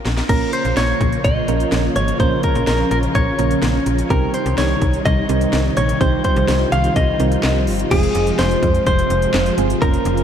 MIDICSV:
0, 0, Header, 1, 6, 480
1, 0, Start_track
1, 0, Key_signature, -4, "minor"
1, 0, Tempo, 476190
1, 295, Time_signature, 4, 2, 24, 8
1, 10317, End_track
2, 0, Start_track
2, 0, Title_t, "Clean electric guitar"
2, 0, Program_c, 0, 27
2, 297, Note_on_c, 0, 70, 93
2, 519, Note_off_c, 0, 70, 0
2, 536, Note_on_c, 0, 72, 89
2, 772, Note_off_c, 0, 72, 0
2, 776, Note_on_c, 0, 73, 92
2, 1251, Note_off_c, 0, 73, 0
2, 1255, Note_on_c, 0, 75, 114
2, 1971, Note_off_c, 0, 75, 0
2, 1975, Note_on_c, 0, 73, 92
2, 2212, Note_off_c, 0, 73, 0
2, 2216, Note_on_c, 0, 72, 99
2, 2452, Note_off_c, 0, 72, 0
2, 2456, Note_on_c, 0, 70, 86
2, 2679, Note_off_c, 0, 70, 0
2, 2696, Note_on_c, 0, 70, 80
2, 2924, Note_off_c, 0, 70, 0
2, 2936, Note_on_c, 0, 70, 86
2, 3001, Note_off_c, 0, 70, 0
2, 3176, Note_on_c, 0, 73, 88
2, 3622, Note_off_c, 0, 73, 0
2, 4137, Note_on_c, 0, 70, 91
2, 4372, Note_off_c, 0, 70, 0
2, 4376, Note_on_c, 0, 72, 82
2, 4612, Note_off_c, 0, 72, 0
2, 4616, Note_on_c, 0, 73, 85
2, 5092, Note_off_c, 0, 73, 0
2, 5096, Note_on_c, 0, 75, 102
2, 5775, Note_off_c, 0, 75, 0
2, 5816, Note_on_c, 0, 73, 92
2, 6051, Note_off_c, 0, 73, 0
2, 6055, Note_on_c, 0, 72, 103
2, 6284, Note_off_c, 0, 72, 0
2, 6296, Note_on_c, 0, 72, 102
2, 6772, Note_off_c, 0, 72, 0
2, 6776, Note_on_c, 0, 77, 108
2, 7012, Note_off_c, 0, 77, 0
2, 7016, Note_on_c, 0, 75, 101
2, 7695, Note_off_c, 0, 75, 0
2, 7976, Note_on_c, 0, 68, 99
2, 8457, Note_on_c, 0, 72, 104
2, 8470, Note_off_c, 0, 68, 0
2, 8903, Note_off_c, 0, 72, 0
2, 8938, Note_on_c, 0, 72, 101
2, 9616, Note_off_c, 0, 72, 0
2, 9896, Note_on_c, 0, 70, 120
2, 10317, Note_off_c, 0, 70, 0
2, 10317, End_track
3, 0, Start_track
3, 0, Title_t, "Synth keys"
3, 0, Program_c, 1, 88
3, 296, Note_on_c, 1, 58, 72
3, 296, Note_on_c, 1, 61, 66
3, 296, Note_on_c, 1, 65, 69
3, 296, Note_on_c, 1, 70, 81
3, 839, Note_off_c, 1, 58, 0
3, 839, Note_off_c, 1, 61, 0
3, 839, Note_off_c, 1, 65, 0
3, 839, Note_off_c, 1, 70, 0
3, 1496, Note_on_c, 1, 61, 65
3, 1496, Note_on_c, 1, 65, 63
3, 1496, Note_on_c, 1, 70, 78
3, 1497, Note_on_c, 1, 58, 69
3, 1903, Note_off_c, 1, 61, 0
3, 1903, Note_off_c, 1, 65, 0
3, 1903, Note_off_c, 1, 70, 0
3, 1904, Note_off_c, 1, 58, 0
3, 2216, Note_on_c, 1, 58, 75
3, 2216, Note_on_c, 1, 61, 68
3, 2216, Note_on_c, 1, 65, 68
3, 2216, Note_on_c, 1, 70, 82
3, 2759, Note_off_c, 1, 58, 0
3, 2759, Note_off_c, 1, 61, 0
3, 2759, Note_off_c, 1, 65, 0
3, 2759, Note_off_c, 1, 70, 0
3, 3415, Note_on_c, 1, 58, 69
3, 3415, Note_on_c, 1, 61, 65
3, 3415, Note_on_c, 1, 65, 65
3, 3415, Note_on_c, 1, 70, 78
3, 3823, Note_off_c, 1, 58, 0
3, 3823, Note_off_c, 1, 61, 0
3, 3823, Note_off_c, 1, 65, 0
3, 3823, Note_off_c, 1, 70, 0
3, 4136, Note_on_c, 1, 55, 77
3, 4136, Note_on_c, 1, 60, 71
3, 4136, Note_on_c, 1, 63, 70
3, 4136, Note_on_c, 1, 67, 85
3, 4679, Note_off_c, 1, 55, 0
3, 4679, Note_off_c, 1, 60, 0
3, 4679, Note_off_c, 1, 63, 0
3, 4679, Note_off_c, 1, 67, 0
3, 5336, Note_on_c, 1, 55, 70
3, 5336, Note_on_c, 1, 60, 64
3, 5336, Note_on_c, 1, 63, 66
3, 5336, Note_on_c, 1, 70, 79
3, 5743, Note_off_c, 1, 55, 0
3, 5743, Note_off_c, 1, 60, 0
3, 5743, Note_off_c, 1, 63, 0
3, 5743, Note_off_c, 1, 70, 0
3, 6055, Note_on_c, 1, 55, 76
3, 6056, Note_on_c, 1, 60, 70
3, 6056, Note_on_c, 1, 63, 71
3, 6056, Note_on_c, 1, 67, 83
3, 6599, Note_off_c, 1, 55, 0
3, 6599, Note_off_c, 1, 60, 0
3, 6599, Note_off_c, 1, 63, 0
3, 6599, Note_off_c, 1, 67, 0
3, 7256, Note_on_c, 1, 55, 72
3, 7256, Note_on_c, 1, 60, 65
3, 7256, Note_on_c, 1, 63, 66
3, 7256, Note_on_c, 1, 70, 78
3, 7663, Note_off_c, 1, 55, 0
3, 7663, Note_off_c, 1, 60, 0
3, 7663, Note_off_c, 1, 63, 0
3, 7663, Note_off_c, 1, 70, 0
3, 7976, Note_on_c, 1, 56, 76
3, 7976, Note_on_c, 1, 60, 71
3, 7976, Note_on_c, 1, 65, 70
3, 7976, Note_on_c, 1, 68, 84
3, 8519, Note_off_c, 1, 56, 0
3, 8519, Note_off_c, 1, 60, 0
3, 8519, Note_off_c, 1, 65, 0
3, 8519, Note_off_c, 1, 68, 0
3, 9656, Note_on_c, 1, 56, 89
3, 9656, Note_on_c, 1, 60, 81
3, 9656, Note_on_c, 1, 65, 83
3, 9656, Note_on_c, 1, 68, 96
3, 9791, Note_off_c, 1, 56, 0
3, 9791, Note_off_c, 1, 65, 0
3, 9791, Note_off_c, 1, 68, 0
3, 9792, Note_off_c, 1, 60, 0
3, 9896, Note_on_c, 1, 58, 77
3, 9896, Note_on_c, 1, 61, 69
3, 9896, Note_on_c, 1, 65, 68
3, 9896, Note_on_c, 1, 70, 85
3, 10317, Note_off_c, 1, 58, 0
3, 10317, Note_off_c, 1, 61, 0
3, 10317, Note_off_c, 1, 65, 0
3, 10317, Note_off_c, 1, 70, 0
3, 10317, End_track
4, 0, Start_track
4, 0, Title_t, "String machine"
4, 0, Program_c, 2, 50
4, 296, Note_on_c, 2, 49, 78
4, 296, Note_on_c, 2, 58, 73
4, 296, Note_on_c, 2, 65, 85
4, 297, Note_on_c, 2, 53, 69
4, 2197, Note_off_c, 2, 58, 0
4, 2216, Note_on_c, 2, 61, 72
4, 4097, Note_off_c, 2, 65, 0
4, 4098, Note_off_c, 2, 49, 0
4, 4098, Note_off_c, 2, 53, 0
4, 4116, Note_off_c, 2, 61, 0
4, 4136, Note_on_c, 2, 48, 79
4, 4136, Note_on_c, 2, 51, 73
4, 4136, Note_on_c, 2, 55, 71
4, 4136, Note_on_c, 2, 63, 88
4, 6037, Note_off_c, 2, 63, 0
4, 6057, Note_on_c, 2, 65, 87
4, 7937, Note_off_c, 2, 48, 0
4, 7937, Note_off_c, 2, 51, 0
4, 7937, Note_off_c, 2, 55, 0
4, 7957, Note_off_c, 2, 65, 0
4, 7977, Note_on_c, 2, 48, 79
4, 7977, Note_on_c, 2, 53, 75
4, 7977, Note_on_c, 2, 56, 72
4, 7977, Note_on_c, 2, 65, 89
4, 9877, Note_off_c, 2, 48, 0
4, 9877, Note_off_c, 2, 56, 0
4, 9896, Note_on_c, 2, 49, 84
4, 9897, Note_on_c, 2, 58, 75
4, 10317, Note_off_c, 2, 49, 0
4, 10317, Note_off_c, 2, 53, 0
4, 10317, Note_off_c, 2, 58, 0
4, 10317, Note_off_c, 2, 65, 0
4, 10317, End_track
5, 0, Start_track
5, 0, Title_t, "FM bass"
5, 0, Program_c, 3, 39
5, 56, Note_on_c, 3, 34, 100
5, 224, Note_off_c, 3, 34, 0
5, 296, Note_on_c, 3, 34, 96
5, 464, Note_off_c, 3, 34, 0
5, 656, Note_on_c, 3, 34, 95
5, 740, Note_off_c, 3, 34, 0
5, 775, Note_on_c, 3, 34, 98
5, 943, Note_off_c, 3, 34, 0
5, 1015, Note_on_c, 3, 34, 113
5, 1183, Note_off_c, 3, 34, 0
5, 1256, Note_on_c, 3, 34, 102
5, 1424, Note_off_c, 3, 34, 0
5, 1495, Note_on_c, 3, 34, 98
5, 1663, Note_off_c, 3, 34, 0
5, 1735, Note_on_c, 3, 34, 96
5, 1904, Note_off_c, 3, 34, 0
5, 1974, Note_on_c, 3, 32, 87
5, 2143, Note_off_c, 3, 32, 0
5, 2215, Note_on_c, 3, 34, 101
5, 2383, Note_off_c, 3, 34, 0
5, 2575, Note_on_c, 3, 34, 101
5, 2659, Note_off_c, 3, 34, 0
5, 2695, Note_on_c, 3, 34, 98
5, 2864, Note_off_c, 3, 34, 0
5, 2935, Note_on_c, 3, 34, 102
5, 3103, Note_off_c, 3, 34, 0
5, 3176, Note_on_c, 3, 34, 107
5, 3344, Note_off_c, 3, 34, 0
5, 3415, Note_on_c, 3, 34, 100
5, 3583, Note_off_c, 3, 34, 0
5, 3655, Note_on_c, 3, 34, 96
5, 3823, Note_off_c, 3, 34, 0
5, 3894, Note_on_c, 3, 34, 92
5, 4063, Note_off_c, 3, 34, 0
5, 4135, Note_on_c, 3, 36, 112
5, 4303, Note_off_c, 3, 36, 0
5, 4494, Note_on_c, 3, 36, 103
5, 4579, Note_off_c, 3, 36, 0
5, 4614, Note_on_c, 3, 36, 102
5, 4783, Note_off_c, 3, 36, 0
5, 4855, Note_on_c, 3, 36, 93
5, 5023, Note_off_c, 3, 36, 0
5, 5097, Note_on_c, 3, 36, 114
5, 5264, Note_off_c, 3, 36, 0
5, 5335, Note_on_c, 3, 36, 98
5, 5503, Note_off_c, 3, 36, 0
5, 5576, Note_on_c, 3, 36, 97
5, 5744, Note_off_c, 3, 36, 0
5, 5816, Note_on_c, 3, 34, 102
5, 5983, Note_off_c, 3, 34, 0
5, 6055, Note_on_c, 3, 36, 103
5, 6223, Note_off_c, 3, 36, 0
5, 6415, Note_on_c, 3, 36, 105
5, 6499, Note_off_c, 3, 36, 0
5, 6535, Note_on_c, 3, 36, 88
5, 6704, Note_off_c, 3, 36, 0
5, 6776, Note_on_c, 3, 36, 99
5, 6944, Note_off_c, 3, 36, 0
5, 7017, Note_on_c, 3, 36, 108
5, 7184, Note_off_c, 3, 36, 0
5, 7256, Note_on_c, 3, 36, 99
5, 7424, Note_off_c, 3, 36, 0
5, 7496, Note_on_c, 3, 36, 101
5, 7737, Note_on_c, 3, 31, 89
5, 7752, Note_off_c, 3, 36, 0
5, 7904, Note_off_c, 3, 31, 0
5, 7975, Note_on_c, 3, 29, 114
5, 8143, Note_off_c, 3, 29, 0
5, 8216, Note_on_c, 3, 29, 105
5, 8384, Note_off_c, 3, 29, 0
5, 8457, Note_on_c, 3, 29, 101
5, 8624, Note_off_c, 3, 29, 0
5, 8696, Note_on_c, 3, 41, 96
5, 8864, Note_off_c, 3, 41, 0
5, 8937, Note_on_c, 3, 29, 109
5, 9105, Note_off_c, 3, 29, 0
5, 9175, Note_on_c, 3, 29, 96
5, 9343, Note_off_c, 3, 29, 0
5, 9415, Note_on_c, 3, 29, 98
5, 9583, Note_off_c, 3, 29, 0
5, 9656, Note_on_c, 3, 31, 93
5, 9824, Note_off_c, 3, 31, 0
5, 9896, Note_on_c, 3, 29, 110
5, 10064, Note_off_c, 3, 29, 0
5, 10136, Note_on_c, 3, 29, 106
5, 10304, Note_off_c, 3, 29, 0
5, 10317, End_track
6, 0, Start_track
6, 0, Title_t, "Drums"
6, 56, Note_on_c, 9, 38, 83
6, 156, Note_off_c, 9, 38, 0
6, 176, Note_on_c, 9, 38, 80
6, 277, Note_off_c, 9, 38, 0
6, 295, Note_on_c, 9, 36, 116
6, 295, Note_on_c, 9, 42, 72
6, 295, Note_on_c, 9, 49, 91
6, 396, Note_off_c, 9, 36, 0
6, 396, Note_off_c, 9, 42, 0
6, 396, Note_off_c, 9, 49, 0
6, 533, Note_on_c, 9, 42, 80
6, 634, Note_off_c, 9, 42, 0
6, 654, Note_on_c, 9, 42, 49
6, 755, Note_off_c, 9, 42, 0
6, 773, Note_on_c, 9, 42, 72
6, 774, Note_on_c, 9, 38, 105
6, 874, Note_off_c, 9, 42, 0
6, 875, Note_off_c, 9, 38, 0
6, 1015, Note_on_c, 9, 36, 76
6, 1015, Note_on_c, 9, 42, 62
6, 1116, Note_off_c, 9, 36, 0
6, 1116, Note_off_c, 9, 42, 0
6, 1134, Note_on_c, 9, 42, 45
6, 1234, Note_off_c, 9, 42, 0
6, 1255, Note_on_c, 9, 42, 74
6, 1256, Note_on_c, 9, 36, 84
6, 1355, Note_off_c, 9, 42, 0
6, 1357, Note_off_c, 9, 36, 0
6, 1493, Note_on_c, 9, 42, 67
6, 1594, Note_off_c, 9, 42, 0
6, 1615, Note_on_c, 9, 42, 54
6, 1716, Note_off_c, 9, 42, 0
6, 1733, Note_on_c, 9, 42, 68
6, 1734, Note_on_c, 9, 38, 121
6, 1833, Note_off_c, 9, 42, 0
6, 1835, Note_off_c, 9, 38, 0
6, 1973, Note_on_c, 9, 42, 73
6, 2074, Note_off_c, 9, 42, 0
6, 2096, Note_on_c, 9, 42, 58
6, 2197, Note_off_c, 9, 42, 0
6, 2215, Note_on_c, 9, 36, 114
6, 2215, Note_on_c, 9, 42, 71
6, 2316, Note_off_c, 9, 36, 0
6, 2316, Note_off_c, 9, 42, 0
6, 2452, Note_on_c, 9, 42, 77
6, 2458, Note_on_c, 9, 36, 86
6, 2553, Note_off_c, 9, 42, 0
6, 2559, Note_off_c, 9, 36, 0
6, 2574, Note_on_c, 9, 42, 51
6, 2675, Note_off_c, 9, 42, 0
6, 2693, Note_on_c, 9, 42, 73
6, 2694, Note_on_c, 9, 38, 111
6, 2793, Note_off_c, 9, 42, 0
6, 2795, Note_off_c, 9, 38, 0
6, 2934, Note_on_c, 9, 42, 64
6, 3035, Note_off_c, 9, 42, 0
6, 3053, Note_on_c, 9, 42, 45
6, 3154, Note_off_c, 9, 42, 0
6, 3174, Note_on_c, 9, 42, 79
6, 3176, Note_on_c, 9, 36, 84
6, 3275, Note_off_c, 9, 42, 0
6, 3277, Note_off_c, 9, 36, 0
6, 3413, Note_on_c, 9, 42, 66
6, 3514, Note_off_c, 9, 42, 0
6, 3535, Note_on_c, 9, 42, 53
6, 3636, Note_off_c, 9, 42, 0
6, 3652, Note_on_c, 9, 42, 69
6, 3654, Note_on_c, 9, 38, 118
6, 3753, Note_off_c, 9, 42, 0
6, 3755, Note_off_c, 9, 38, 0
6, 3893, Note_on_c, 9, 42, 74
6, 3993, Note_off_c, 9, 42, 0
6, 4016, Note_on_c, 9, 42, 62
6, 4117, Note_off_c, 9, 42, 0
6, 4135, Note_on_c, 9, 36, 117
6, 4135, Note_on_c, 9, 42, 69
6, 4236, Note_off_c, 9, 36, 0
6, 4236, Note_off_c, 9, 42, 0
6, 4372, Note_on_c, 9, 42, 78
6, 4473, Note_off_c, 9, 42, 0
6, 4494, Note_on_c, 9, 42, 50
6, 4594, Note_off_c, 9, 42, 0
6, 4613, Note_on_c, 9, 42, 75
6, 4614, Note_on_c, 9, 38, 113
6, 4714, Note_off_c, 9, 42, 0
6, 4715, Note_off_c, 9, 38, 0
6, 4854, Note_on_c, 9, 42, 66
6, 4855, Note_on_c, 9, 36, 75
6, 4955, Note_off_c, 9, 42, 0
6, 4956, Note_off_c, 9, 36, 0
6, 4974, Note_on_c, 9, 42, 46
6, 5075, Note_off_c, 9, 42, 0
6, 5095, Note_on_c, 9, 42, 77
6, 5096, Note_on_c, 9, 36, 87
6, 5196, Note_off_c, 9, 42, 0
6, 5197, Note_off_c, 9, 36, 0
6, 5334, Note_on_c, 9, 42, 69
6, 5434, Note_off_c, 9, 42, 0
6, 5455, Note_on_c, 9, 42, 52
6, 5556, Note_off_c, 9, 42, 0
6, 5572, Note_on_c, 9, 42, 67
6, 5574, Note_on_c, 9, 38, 118
6, 5673, Note_off_c, 9, 42, 0
6, 5674, Note_off_c, 9, 38, 0
6, 5813, Note_on_c, 9, 42, 74
6, 5914, Note_off_c, 9, 42, 0
6, 5937, Note_on_c, 9, 42, 60
6, 6038, Note_off_c, 9, 42, 0
6, 6055, Note_on_c, 9, 36, 117
6, 6055, Note_on_c, 9, 42, 69
6, 6156, Note_off_c, 9, 36, 0
6, 6156, Note_off_c, 9, 42, 0
6, 6293, Note_on_c, 9, 42, 79
6, 6298, Note_on_c, 9, 36, 86
6, 6394, Note_off_c, 9, 42, 0
6, 6399, Note_off_c, 9, 36, 0
6, 6414, Note_on_c, 9, 42, 48
6, 6515, Note_off_c, 9, 42, 0
6, 6534, Note_on_c, 9, 42, 72
6, 6535, Note_on_c, 9, 38, 111
6, 6635, Note_off_c, 9, 42, 0
6, 6636, Note_off_c, 9, 38, 0
6, 6775, Note_on_c, 9, 42, 63
6, 6876, Note_off_c, 9, 42, 0
6, 6894, Note_on_c, 9, 42, 46
6, 6995, Note_off_c, 9, 42, 0
6, 7015, Note_on_c, 9, 42, 80
6, 7017, Note_on_c, 9, 36, 88
6, 7116, Note_off_c, 9, 42, 0
6, 7118, Note_off_c, 9, 36, 0
6, 7254, Note_on_c, 9, 42, 67
6, 7355, Note_off_c, 9, 42, 0
6, 7375, Note_on_c, 9, 42, 56
6, 7476, Note_off_c, 9, 42, 0
6, 7493, Note_on_c, 9, 42, 71
6, 7494, Note_on_c, 9, 38, 123
6, 7494, Note_on_c, 9, 39, 105
6, 7593, Note_off_c, 9, 42, 0
6, 7595, Note_off_c, 9, 38, 0
6, 7595, Note_off_c, 9, 39, 0
6, 7733, Note_on_c, 9, 46, 77
6, 7834, Note_off_c, 9, 46, 0
6, 7857, Note_on_c, 9, 42, 63
6, 7958, Note_off_c, 9, 42, 0
6, 7975, Note_on_c, 9, 42, 73
6, 7975, Note_on_c, 9, 49, 100
6, 7976, Note_on_c, 9, 36, 119
6, 8076, Note_off_c, 9, 36, 0
6, 8076, Note_off_c, 9, 42, 0
6, 8076, Note_off_c, 9, 49, 0
6, 8095, Note_on_c, 9, 42, 52
6, 8196, Note_off_c, 9, 42, 0
6, 8212, Note_on_c, 9, 42, 83
6, 8313, Note_off_c, 9, 42, 0
6, 8334, Note_on_c, 9, 42, 51
6, 8435, Note_off_c, 9, 42, 0
6, 8454, Note_on_c, 9, 42, 77
6, 8455, Note_on_c, 9, 38, 112
6, 8554, Note_off_c, 9, 42, 0
6, 8556, Note_off_c, 9, 38, 0
6, 8578, Note_on_c, 9, 42, 52
6, 8678, Note_off_c, 9, 42, 0
6, 8695, Note_on_c, 9, 42, 65
6, 8696, Note_on_c, 9, 36, 80
6, 8796, Note_off_c, 9, 36, 0
6, 8796, Note_off_c, 9, 42, 0
6, 8815, Note_on_c, 9, 42, 47
6, 8916, Note_off_c, 9, 42, 0
6, 8936, Note_on_c, 9, 42, 81
6, 8937, Note_on_c, 9, 36, 89
6, 9037, Note_off_c, 9, 42, 0
6, 9038, Note_off_c, 9, 36, 0
6, 9058, Note_on_c, 9, 42, 56
6, 9159, Note_off_c, 9, 42, 0
6, 9175, Note_on_c, 9, 42, 70
6, 9276, Note_off_c, 9, 42, 0
6, 9296, Note_on_c, 9, 42, 55
6, 9397, Note_off_c, 9, 42, 0
6, 9414, Note_on_c, 9, 42, 70
6, 9416, Note_on_c, 9, 38, 121
6, 9416, Note_on_c, 9, 39, 101
6, 9515, Note_off_c, 9, 42, 0
6, 9516, Note_off_c, 9, 38, 0
6, 9516, Note_off_c, 9, 39, 0
6, 9535, Note_on_c, 9, 42, 56
6, 9636, Note_off_c, 9, 42, 0
6, 9655, Note_on_c, 9, 42, 76
6, 9755, Note_off_c, 9, 42, 0
6, 9778, Note_on_c, 9, 42, 61
6, 9879, Note_off_c, 9, 42, 0
6, 9896, Note_on_c, 9, 36, 120
6, 9896, Note_on_c, 9, 42, 74
6, 9997, Note_off_c, 9, 36, 0
6, 9997, Note_off_c, 9, 42, 0
6, 10015, Note_on_c, 9, 42, 54
6, 10116, Note_off_c, 9, 42, 0
6, 10134, Note_on_c, 9, 42, 80
6, 10234, Note_off_c, 9, 42, 0
6, 10256, Note_on_c, 9, 42, 53
6, 10317, Note_off_c, 9, 42, 0
6, 10317, End_track
0, 0, End_of_file